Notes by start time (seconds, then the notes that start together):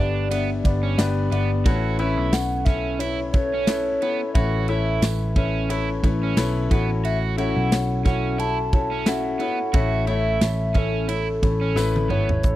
Already playing: G1 G2 D4 C#5 D5
0.00 B3 D4 G4 B4 D5
0.31 B3 D4 G4 B4 E5, ride
0.65 G1 B3 D4 G4 B4 D5, kick, ride
0.83 C#4
0.98 G1 B3 D4 G4 B4 D5, snare, ride, tambourine
1.31 G1 B3 D4 G4 B4 D5, ride
1.65 A1 A2 C#4 E4 F#4 A4 B4 C#5, kick, ride
1.99 C#4 E4 A4 B4 C#5, ride
2.17 B1
2.32 C#4 E4 A4 B4 C#5 F#5, snare, ride, tambourine
2.65 C#4 E4 A4 B4 E5, kick, snare, ride
2.99 C#4 E4 A4 B4 C#5, ride
3.33 C#4 E4 A4 B4 C#5, kick, ride
3.54 C#4
3.67 C#4 E4 A4 B4 E5, snare, ride, tambourine
4.02 B3 C#4 E4 A4 B4 C#5, ride
4.34 A1 A2 C#4 E4 F#4 A4 B4 C#5 E5, kick, ride
4.68 C#4 E4 A4 B4 C#5 E5, ride
5.02 A1 C#4 E4 A4 B4 E5, snare, ride, tambourine
5.36 C#4 E4 A4 B4 E5, kick, ride
5.70 C#4 E4 A4 B4 C#5, ride
6.03 A1 C#4 E4 A4 B4 C#5, kick, ride
6.23 C#4
6.37 B1 C#4 E4 A4 B4 C#5, snare, ride, tambourine
6.71 A1 A2 B3 C#4 E4 F#4 A4 C#5, kick, ride
7.04 F#4 E5, ride
7.38 C#4 E4 F#4 A4 C#5 F#5, ride
7.57 B1
7.72 C#4 E4 A4 C#5, snare, ride, tambourine
8.05 C#4 E4 F#4 A4 C#5 F#5, kick, snare, ride
8.38 C#4 E4 F#4 A4 C#5 A5, ride
8.73 C#4 E4 F#4 A4 C#5, kick, ride
8.91 C#4
9.06 C#4 E4 F#4 A4 E5 F#5, snare, ride, tambourine
9.39 B3 C#4 E4 F#4 A4 C#5, ride
9.73 A1 A2 A3 C#4 E4 F#4 A4 C#5 E5, kick, ride
10.07 A3 C#4 E4 A4 C#5 E5, ride
10.41 A1 A3 C#4 E4 A4 C#5, snare, ride, tambourine
10.74 A3 C#4 E4 A4 E5, kick, ride
11.08 A3 C#4 E4 A4 C#5, ride
11.43 A1 A3 C#4 E4 A4 C#5, kick, ride
11.61 C#4
11.75 A1 A3 C#4 E4 A4 B4, snare, tambourine
11.96 high tom
12.10 G#1 A3 B3 C#4 E4 A4 C#5, mid tom
12.29 floor tom
12.43 A1 A2 A3 C#4 E4 A4, kick, closed hi-hat